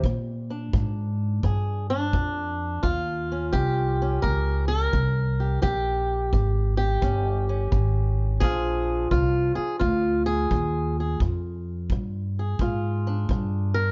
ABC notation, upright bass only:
X:1
M:4/4
L:1/8
Q:"Swing" 1/4=86
K:Bbmix
V:1 name="Upright bass" clef=bass
B,,2 A,,2 G,,2 F,,2 | E,,2 C,,2 _D,,2 C,,2 | B,,,2 A,,,2 G,,,2 A,,,2 | B,,,2 C,, z D,,2 E,,2 |
F,,2 G,,2 A,,2 G,,2 |]